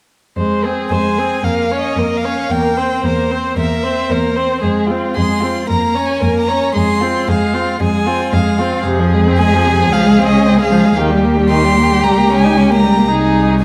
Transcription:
0.36 0.82 F2 soft
0.36 0.67 G#3 soft
0.36 0.66 C5 soft
0.65 0.93 C4 soft
0.65 0.93 G#4 soft
0.91 1.36 F2 soft
0.91 1.20 G#3 soft
0.91 1.20 C5 soft
0.91 1.46 G#5 soft
1.18 1.45 C4 soft
1.18 1.45 G#4 soft
1.43 1.88 F2 soft
1.43 1.73 A#3 soft
1.43 1.73 A#4 soft
1.43 1.79 F5 soft
1.71 1.99 C#4 soft
1.71 2.00 C#5 soft
1.80 2.18 D#5 soft
1.96 2.42 F2 soft
1.96 2.26 A#3 soft
1.96 2.27 A#4 soft
2.17 2.52 F5 soft
2.25 2.51 C#4 soft
2.25 2.51 C#5 soft
2.50 2.95 E2 soft
2.50 2.79 A#3 soft
2.50 2.79 A#4 soft
2.50 3.04 G5 soft
2.77 3.07 C4 soft
2.77 3.07 C5 soft
3.03 3.49 E2 soft
3.03 3.33 A#3 soft
3.03 3.33 A#4 soft
3.03 3.57 C5 soft
3.31 3.57 C4 soft
3.31 3.57 C5 soft
3.57 4.02 E2 soft
3.57 3.86 A#3 soft
3.57 3.84 A#4 soft
3.57 4.14 E5 soft
3.83 4.13 C4 soft
3.83 4.11 C5 soft
4.10 4.55 E2 soft
4.10 4.38 A#3 soft
4.10 4.38 A#4 soft
4.10 4.65 C5 soft
4.36 4.63 C4 soft
4.36 4.61 C5 soft
4.61 5.08 F2 soft
4.61 4.92 G#3 soft
4.61 4.88 G#4 soft
4.87 5.18 C4 soft
4.87 5.16 F4 soft
5.14 5.61 F2 soft
5.14 5.45 G#3 soft
5.14 5.42 G#4 soft
5.14 5.66 C6 medium
5.40 5.69 C4 soft
5.40 5.67 F4 soft
5.68 6.14 F2 soft
5.68 5.97 A#3 soft
5.68 5.96 A#4 soft
5.68 6.07 A#5 soft
5.94 6.23 C#4 soft
5.94 6.22 C#5 soft
6.05 6.39 G#5 soft
6.21 6.67 F2 soft
6.21 6.52 A#3 soft
6.21 6.50 A#4 soft
6.39 6.74 A#5 soft
6.48 6.75 C#4 soft
6.48 6.74 C#5 soft
6.74 7.20 F2 soft
6.74 7.03 G#3 soft
6.74 7.02 G#4 soft
6.74 7.26 C6 medium
7.01 7.30 C4 soft
7.01 7.30 F4 soft
7.28 7.72 F2 soft
7.28 7.55 G#3 soft
7.28 7.55 G#4 soft
7.28 7.81 F5 soft
7.54 7.80 C4 soft
7.54 7.80 F4 soft
7.80 8.25 F2 soft
7.80 8.08 G#3 soft
7.80 8.08 G#4 soft
7.80 8.33 G#5 medium
8.07 8.34 C4 soft
8.07 8.34 F4 soft
8.33 8.77 F2 soft
8.33 8.62 G#3 soft
8.33 8.60 G#4 soft
8.33 8.85 F5 soft
8.59 8.86 C4 soft
8.59 8.85 F4 soft
8.85 9.93 F2 soft
8.85 9.01 C3 soft
8.85 10.99 G#4 soft
8.99 9.16 F3 soft
9.14 9.29 G#3 soft
9.27 9.41 C4 soft
9.38 9.55 G#3 soft
9.38 9.94 G#5 medium
9.54 9.68 F3 soft
9.67 9.82 C3 soft
9.80 9.92 F3 soft
9.92 10.96 C#2 soft
9.92 10.08 F3 soft
9.92 10.26 F5 medium
10.06 10.20 G#3 soft
10.19 10.34 C4 soft
10.26 10.60 D#5 soft
10.32 10.47 C#4 soft
10.45 10.60 C4 soft
10.59 10.73 G#3 soft
10.59 10.96 F5 soft
10.71 10.86 F3 soft
10.84 10.97 G#3 soft
10.97 12.05 D#2 soft
10.97 11.12 D#3 soft
10.97 13.09 G4 soft
11.11 11.26 G3 soft
11.24 11.39 A#3 soft
11.37 11.52 G3 soft
11.50 11.66 D#3 soft
11.50 12.05 C6 medium
11.64 11.79 G3 soft
11.78 11.93 A#3 soft
11.92 12.03 G3 soft
12.03 13.09 C#2 soft
12.03 12.19 G3 soft
12.03 12.37 A#5 medium
12.17 12.32 A#3 soft
12.30 12.46 C#4 soft
12.38 12.73 G#5 medium
12.44 12.58 D#4 soft
12.57 12.72 C#4 soft
12.70 12.86 A#3 soft
12.70 13.09 A#5 medium
12.84 12.99 G3 soft
12.97 13.10 A#3 soft
13.09 13.64 C2 soft
13.09 13.59 D#4 soft
13.09 13.59 G#4 soft

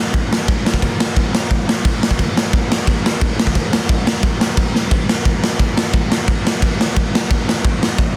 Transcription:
0.14 kick loud
0.14 crash medium
0.33 snare loud
0.48 kick loud
0.48 crash medium
0.66 snare loud
0.74 kick medium
0.82 kick loud
0.82 crash medium
1.00 snare loud
1.17 kick loud
1.17 crash medium
1.35 snare loud
1.51 kick loud
1.51 crash medium
1.69 snare loud
1.85 kick loud
1.85 crash medium
2.03 snare loud
2.11 kick loud
2.19 kick loud
2.19 crash medium
2.37 snare loud
2.53 kick loud
2.53 crash medium
2.72 snare loud
2.87 kick loud
2.87 crash medium
3.06 snare loud
3.21 kick loud
3.21 crash medium
3.39 snare loud
3.47 kick loud
3.55 kick loud
3.55 crash medium
3.73 snare loud
3.89 kick loud
3.89 crash medium
4.07 snare loud
4.23 kick loud
4.23 crash medium
4.41 snare loud
4.57 kick loud
4.57 crash medium
4.76 snare medium
4.91 kick loud
4.91 crash medium
5.09 snare loud
5.25 kick loud
5.25 crash medium
5.44 snare loud
5.59 kick loud
5.59 crash medium
5.78 snare loud
5.93 kick loud
5.93 crash medium
6.12 snare loud
6.28 kick loud
6.28 crash medium
6.47 snare loud
6.62 kick loud
6.62 crash medium
6.81 snare loud
6.97 kick loud
6.97 crash medium
7.15 snare loud
7.31 kick loud
7.31 crash medium
7.49 snare loud
7.65 kick loud
7.65 crash medium
7.83 snare loud
7.98 kick loud
7.98 crash medium

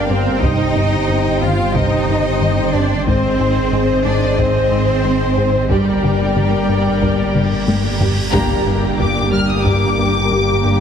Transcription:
0.00 3.02 G1 medium
0.00 3.08 G1 medium
0.00 0.42 A#3 medium
0.00 0.42 G4 medium
0.00 0.38 A#4 medium
0.00 0.42 A#4 medium
0.00 0.38 D5 medium
0.00 0.38 F5 medium
0.00 0.42 F5 medium
0.00 3.02 G5 medium
0.09 0.29 G2 medium
0.09 0.42 C4 medium
0.09 0.29 G4 medium
0.09 0.43 C5 medium
0.42 0.63 G2 medium
0.42 0.62 C3 medium
0.42 5.70 D#3 medium
0.42 5.70 C4 medium
0.42 1.41 D#4 loud
0.42 2.89 G4 medium
0.42 3.06 G4 medium
0.42 2.89 C5 medium
0.42 5.66 C5 medium
0.42 5.70 C5 medium
0.42 1.42 D#5 medium
0.42 taiko loud
0.75 0.96 G2 medium
0.75 0.95 C4 medium
1.09 1.28 G2 medium
1.09 1.28 C4 medium
1.41 1.61 G2 medium
1.41 1.61 D#3 medium
1.41 1.74 F4 medium
1.41 1.75 F5 medium
1.74 1.95 G2 medium
1.74 1.94 C3 medium
1.74 2.73 D#4 loud
1.74 2.71 D#5 medium
1.74 taiko medium
2.08 2.28 G2 medium
2.40 2.60 G2 medium
2.40 2.61 D#3 medium
2.73 2.93 G2 medium
2.73 2.94 C4 medium
2.73 3.06 D4 medium
2.73 3.06 D5 medium
3.06 5.66 G#1 medium
3.06 5.72 G#1 medium
3.06 3.27 G#2 medium
3.06 3.27 G#3 medium
3.06 4.03 C4 loud
3.06 5.66 G#4 medium
3.06 5.70 G#4 medium
3.06 5.66 C5 medium
3.06 4.03 C5 medium
3.06 5.67 D#5 medium
3.06 taiko medium
3.39 3.59 G#2 medium
3.39 3.60 G#4 medium
3.72 3.92 G#2 medium
3.72 3.93 G#4 medium
4.05 4.25 G#2 medium
4.05 4.26 C4 medium
4.05 4.38 D4 medium
4.05 4.37 D5 medium
4.38 4.58 G#2 medium
4.38 4.59 G#3 medium
4.38 5.70 C4 medium
4.38 5.70 C5 medium
4.38 taiko medium
4.71 4.91 G#2 medium
5.04 5.24 G#2 medium
5.04 5.24 C4 medium
5.37 5.57 G#2 medium
5.37 5.57 G#4 medium
5.70 8.10 G1 medium
5.70 8.32 G1 medium
5.70 5.90 G2 medium
5.70 7.97 G3 medium
5.70 5.90 G3 medium
5.70 8.34 A#3 medium
5.70 8.32 D4 medium
5.70 7.97 G4 medium
5.70 8.31 G4 medium
5.70 7.98 A#4 medium
5.70 8.10 A#4 medium
5.70 7.98 D5 medium
5.70 8.10 D5 medium
5.70 8.34 D5 medium
5.70 8.10 G5 medium
5.70 taiko medium
5.70 cymbal swell medium
6.03 6.23 G2 medium
6.03 6.23 G4 medium
6.03 taiko mid soft
6.36 6.55 G2 medium
6.36 6.56 G4 medium
6.36 taiko mid medium
6.69 6.88 G2 medium
6.69 6.89 A#3 medium
7.01 7.22 G2 medium
7.01 7.21 G3 medium
7.01 taiko medium
7.35 7.55 G2 medium
7.35 taiko mid medium
7.68 7.87 G2 medium
7.68 7.88 A#3 medium
7.68 taiko high medium
8.00 8.20 G2 medium
8.00 8.21 G4 medium
8.00 taiko low medium
8.32 10.80 G1 medium
8.32 8.53 G2 loud
8.32 10.80 G2 medium
8.32 10.80 G3 medium
8.32 8.53 G3 medium
8.32 10.80 A#3 medium
8.32 10.80 A#3 loud
8.32 10.80 D4 medium
8.32 10.80 D4 loud
8.32 10.80 G4 loud
8.32 10.80 G4 medium
8.32 10.80 A#4 loud
8.32 10.80 G5 medium
8.32 8.95 A#5 loud
8.32 taiko loud
8.32 impact medium
8.66 8.86 G2 medium
8.99 9.19 G2 medium
8.99 9.19 G4 medium
8.99 9.33 D6 medium
8.99 taiko low medium
9.32 9.52 G3 medium
9.32 9.49 F6 medium
9.32 taiko low medium
9.49 9.66 D#6 medium
9.65 9.85 G2 medium
9.65 9.85 G3 loud
9.65 10.80 D6 loud
9.65 taiko medium
9.98 10.18 G2 medium
9.98 10.18 A#3 medium
10.31 10.51 G2 medium
10.31 10.51 G4 medium
10.64 10.80 G2 medium
10.64 10.80 A#3 medium

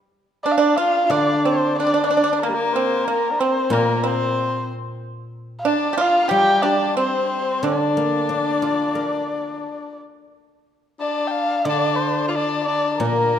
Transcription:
0.44 0.58 D4 medium
0.44 0.56 D4 medium
0.44 0.53 D5 medium
0.52 0.60 F5 medium
0.58 0.76 D4 medium
0.58 0.80 D4 medium
0.58 0.78 D5 medium
0.77 1.09 F4 medium
0.77 1.04 F4 medium
0.77 1.12 F5 medium
1.06 3.06 D3 soft
1.06 1.13 F4 medium
1.10 1.42 D4 medium
1.10 1.77 D4 medium
1.10 1.47 D5 medium
1.45 1.76 C4 medium
1.45 1.78 C5 medium
1.79 1.86 D4 medium
1.79 2.46 D4 medium
1.79 2.06 D5 medium
1.87 1.93 D4 soft
1.94 2.00 D4 medium
2.04 2.09 D4 medium
2.04 2.38 D5 medium
2.11 2.16 D4 medium
2.17 2.22 D4 medium
2.24 2.29 D4 medium
2.33 2.38 D4 soft
2.42 2.73 A#3 medium
2.42 2.50 A#3 medium
2.42 2.75 A#4 medium
2.49 2.56 G3 medium
2.54 3.06 A#3 medium
2.73 3.05 C4 medium
2.73 3.07 C5 medium
3.05 3.37 A#3 medium
3.05 3.33 A#3 medium
3.05 3.41 A#4 medium
3.31 3.42 D4 soft
3.40 3.69 C4 medium
3.40 3.72 C4 medium
3.40 3.74 C5 medium
3.70 5.66 A#2 medium
3.70 4.05 A#3 medium
3.70 4.02 A#3 medium
3.70 4.08 A#4 medium
4.03 4.69 C4 medium
4.03 4.65 C4 medium
4.03 4.70 C5 medium
5.59 5.68 F5 medium
5.65 5.90 D4 medium
5.65 6.02 D4 medium
5.65 6.03 D5 medium
5.93 5.97 G4 medium
5.98 6.28 F4 medium
5.98 6.33 F4 medium
5.98 6.30 F5 medium
6.29 8.29 G3 soft
6.29 6.61 G4 medium
6.29 6.67 G4 medium
6.29 6.64 G5 medium
6.63 6.94 D4 medium
6.63 6.97 D4 medium
6.63 6.96 D5 medium
6.97 7.59 C4 medium
6.97 7.64 C4 medium
6.97 7.28 C5 medium
7.30 7.66 C5 medium
7.63 9.64 D3 soft
7.63 9.98 D4 medium
7.63 9.95 D4 medium
7.63 9.99 D5 medium
7.97 9.30 A#3 soft
8.29 9.64 D4 soft
8.62 9.99 F4 soft
8.95 10.33 A#4 soft
11.00 11.63 D4 medium
11.00 11.29 D5 medium
11.28 11.66 F5 medium
11.28 11.33 G5 medium
11.65 13.39 D3 medium
11.65 11.97 D5 medium
11.69 12.25 D4 medium
11.96 12.32 C5 medium
12.28 12.37 F4 medium
12.28 12.64 D5 medium
12.36 12.67 D4 medium
12.64 13.03 D4 medium
12.64 12.97 D5 medium
12.97 13.39 A#2 medium
12.97 13.39 A#3 medium
12.97 13.39 A#4 medium

